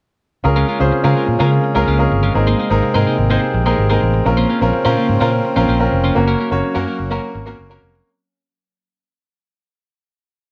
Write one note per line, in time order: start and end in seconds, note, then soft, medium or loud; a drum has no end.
0.44 0.63 C#2 loud
0.44 2.33 C#3 medium
0.44 4.22 G#3 medium
0.44 8.03 A#3 medium
0.44 0.76 C#4 medium
0.44 0.76 F4 medium
0.44 2.33 F4 medium
0.44 0.76 G#4 medium
0.44 0.77 A#4 medium
0.44 muted clean electric guitar stroke soft
0.56 0.67 G#3 medium
0.56 0.67 C#4 medium
0.56 0.67 F4 medium
0.56 0.68 A#4 medium
0.68 0.79 G#3 medium
0.68 0.79 C#4 medium
0.68 0.79 F4 medium
0.68 0.79 A#4 medium
0.80 0.89 C#2 medium
0.80 1.01 C#4 medium
0.80 1.01 F4 medium
0.80 1.02 G#4 medium
0.80 1.02 C5 medium
0.80 muted clean electric guitar stroke soft
0.92 muted clean electric guitar stroke soft
0.92 muted fingered electric bass stroke soft
1.03 1.13 C#3 loud
1.03 1.15 G#3 medium
1.03 1.36 C#4 medium
1.03 1.15 C#4 medium
1.03 1.36 F4 medium
1.03 1.15 F4 medium
1.03 1.36 G#4 medium
1.03 1.16 A#4 medium
1.03 1.36 A#4 medium
1.16 1.27 G#3 medium
1.16 1.27 C#4 medium
1.16 1.27 F4 medium
1.16 1.27 A#4 medium
1.28 1.37 A#2 medium
1.28 muted clean electric guitar stroke soft
1.39 1.58 C#3 medium
1.39 1.54 G#3 medium
1.39 1.71 C#4 medium
1.39 1.51 C#4 medium
1.39 1.71 F4 medium
1.39 1.51 F4 medium
1.39 1.72 G#4 medium
1.39 1.72 A#4 medium
1.39 1.51 A#4 medium
1.52 muted clean electric guitar stroke soft
1.64 muted clean electric guitar stroke soft
1.75 1.85 C#2 medium
1.75 1.86 G#3 soft
1.75 1.96 C#4 medium
1.75 1.86 C#4 medium
1.75 1.97 F4 medium
1.75 1.87 F4 medium
1.75 1.97 G#4 medium
1.75 1.87 A#4 medium
1.75 1.97 A#4 medium
1.87 2.06 C#2 medium
1.87 2.02 G#3 medium
1.87 1.99 C#4 medium
1.87 1.99 F4 medium
1.87 1.98 A#4 medium
1.98 2.31 C#4 medium
1.98 2.31 F4 medium
1.98 2.31 G#4 medium
1.98 2.31 A#4 medium
1.98 muted clean electric guitar stroke soft
2.11 2.29 G1 medium
2.11 muted clean electric guitar stroke soft
2.23 2.34 G#3 medium
2.23 2.35 C#4 medium
2.23 2.34 F4 medium
2.23 2.34 A#4 medium
2.34 2.53 G#1 loud
2.34 4.24 C3 medium
2.34 2.67 C4 medium
2.34 2.67 D#4 medium
2.34 2.67 G#4 medium
2.34 2.67 A#4 medium
2.34 muted clean electric guitar stroke soft
2.47 2.58 A#3 medium
2.47 2.58 D#4 medium
2.47 2.58 G#4 medium
2.47 2.59 C5 medium
2.59 2.70 A#3 medium
2.59 2.70 D#4 medium
2.59 2.70 G#4 medium
2.59 2.70 C5 medium
2.70 2.80 G#1 medium
2.70 2.92 C4 medium
2.70 2.92 D#4 medium
2.70 2.92 G#4 medium
2.70 2.92 A#4 medium
2.70 muted clean electric guitar stroke soft
2.83 muted clean electric guitar stroke soft
2.83 muted fingered electric bass stroke soft
2.94 3.04 G#2 loud
2.94 3.05 A#3 medium
2.94 3.26 C4 medium
2.94 3.26 D#4 medium
2.94 3.06 D#4 medium
2.94 3.06 G#4 medium
2.94 3.27 G#4 medium
2.94 3.27 A#4 medium
2.94 3.06 C5 medium
3.06 3.18 A#3 medium
3.06 3.18 D#4 medium
3.06 3.17 G#4 medium
3.06 3.17 C5 medium
3.18 3.36 G#1 medium
3.30 3.44 A#3 medium
3.30 3.62 C4 medium
3.30 3.62 D#4 medium
3.30 3.42 D#4 medium
3.30 3.62 G#4 medium
3.30 3.41 G#4 medium
3.30 3.41 C5 medium
3.30 3.62 C5 medium
3.42 muted clean electric guitar stroke soft
3.54 3.72 A#1 medium
3.54 muted clean electric guitar stroke soft
3.66 3.77 A#3 medium
3.66 3.87 C4 medium
3.66 3.87 D#4 medium
3.66 3.77 D#4 medium
3.66 3.77 G#4 medium
3.66 3.87 G#4 medium
3.66 3.88 A#4 medium
3.66 3.77 C5 medium
3.78 3.96 G#1 medium
3.89 4.01 A#3 medium
3.89 4.22 C4 medium
3.89 4.22 D#4 medium
3.89 4.01 D#4 medium
3.89 4.01 G#4 medium
3.89 4.22 G#4 medium
3.89 4.22 A#4 medium
3.89 4.01 C5 medium
4.02 4.20 A1 medium
4.02 muted clean electric guitar stroke soft
4.14 muted clean electric guitar stroke soft
4.25 4.44 A#1 loud
4.25 6.14 C#3 medium
4.25 4.57 C4 medium
4.25 4.57 C#4 medium
4.25 4.58 F4 medium
4.25 4.58 A#4 medium
4.25 6.14 C5 medium
4.25 muted clean electric guitar stroke soft
4.37 4.48 A#3 medium
4.37 4.48 C#4 medium
4.37 4.49 F4 medium
4.37 4.49 C5 medium
4.49 4.60 A#3 medium
4.49 4.61 C#4 medium
4.49 4.60 F4 medium
4.49 4.60 C5 medium
4.61 4.70 A#1 medium
4.61 4.82 C4 medium
4.61 4.83 C#4 medium
4.61 4.83 F4 medium
4.61 4.83 A#4 medium
4.61 muted clean electric guitar stroke medium
4.73 muted clean electric guitar stroke soft
4.73 muted fingered electric bass stroke soft
4.85 4.94 A#2 loud
4.85 4.95 A#3 medium
4.85 5.17 C4 medium
4.85 5.17 C#4 medium
4.85 4.96 C#4 medium
4.85 4.96 F4 medium
4.85 5.17 F4 medium
4.85 5.17 A#4 loud
4.85 4.96 C5 medium
4.96 5.08 A#3 medium
4.96 5.08 C#4 medium
4.96 5.08 F4 medium
4.96 5.07 C5 medium
5.09 5.18 G#2 medium
5.09 muted clean electric guitar stroke soft
5.20 5.39 A#2 loud
5.20 5.35 A#3 medium
5.20 5.52 C4 medium
5.20 5.53 C#4 medium
5.20 5.32 C#4 medium
5.20 5.53 F4 medium
5.20 5.32 F4 medium
5.20 5.53 A#4 loud
5.20 5.31 C5 medium
5.32 muted clean electric guitar stroke soft
5.45 muted clean electric guitar stroke soft
5.56 5.65 A#1 medium
5.56 5.67 A#3 medium
5.56 5.77 C4 medium
5.56 5.78 C#4 medium
5.56 5.67 C#4 medium
5.56 5.78 F4 medium
5.56 5.67 F4 medium
5.56 5.78 A#4 loud
5.56 5.68 C5 medium
5.68 5.86 A#1 medium
5.68 5.82 A#3 medium
5.68 5.80 C#4 medium
5.68 5.79 F4 medium
5.68 5.79 C5 medium
5.79 6.12 C4 medium
5.79 6.12 C#4 medium
5.79 6.12 F4 medium
5.79 6.12 A#4 medium
5.79 muted clean electric guitar stroke soft
5.92 6.10 F1 medium
5.92 muted clean electric guitar stroke soft
6.04 6.15 A#3 medium
6.04 6.15 C#4 medium
6.04 6.15 F4 medium
6.04 6.15 C5 medium
6.15 6.34 F#1 loud
6.15 8.04 F#3 medium
6.15 6.47 A#3 medium
6.15 6.48 C#4 medium
6.15 8.05 C#4 medium
6.15 6.48 F#4 medium
6.15 6.48 A#4 medium
6.15 muted clean electric guitar stroke soft
6.28 6.38 A#3 medium
6.28 6.39 C#4 medium
6.28 6.39 F#4 medium
6.28 6.39 A#4 medium
6.40 6.51 A#3 medium
6.40 6.51 C#4 medium
6.40 6.50 F#4 medium
6.40 6.50 A#4 medium
6.51 6.61 F#1 medium
6.51 6.73 A#3 medium
6.51 6.73 C#4 medium
6.51 6.73 F#4 medium
6.51 6.73 C#5 medium
6.51 muted clean electric guitar stroke soft
6.63 muted clean electric guitar stroke soft
6.63 muted fingered electric bass stroke soft
6.74 6.85 F#2 medium
6.74 7.07 A#3 medium
6.74 6.85 A#3 medium
6.74 7.07 C#4 medium
6.74 6.86 C#4 medium
6.74 7.07 F#4 medium
6.74 6.86 F#4 medium
6.74 6.86 A#4 medium
6.74 7.07 A#4 medium
6.87 6.98 A#3 medium
6.87 6.99 C#4 medium
6.87 6.98 F#4 medium
6.87 6.98 A#4 medium
6.99 7.17 F#1 medium
6.99 muted clean electric guitar stroke soft
7.10 7.43 A#3 medium
7.10 7.25 A#3 medium
7.10 7.43 C#4 medium
7.10 7.22 C#4 medium
7.10 7.43 F#4 medium
7.10 7.22 F#4 medium
7.10 7.43 A#4 medium
7.10 7.22 A#4 loud
7.23 muted clean electric guitar stroke medium
7.35 7.53 G#1 medium
7.35 muted clean electric guitar stroke soft
7.46 7.68 A#3 medium
7.46 7.58 A#3 medium
7.46 7.68 C#4 medium
7.46 7.58 C#4 medium
7.46 7.68 F#4 medium
7.46 7.58 F#4 medium
7.46 7.58 A#4 medium
7.46 7.68 A#4 medium
7.59 7.77 F#1 loud
7.70 8.02 A#3 medium
7.70 7.81 A#3 medium
7.70 8.02 C#4 medium
7.70 7.82 C#4 medium
7.70 8.02 F#4 medium
7.70 7.82 F#4 medium
7.70 7.82 A#4 medium
7.70 8.03 A#4 medium
7.82 8.00 F1 medium
7.82 muted clean electric guitar stroke soft
7.95 muted clean electric guitar stroke soft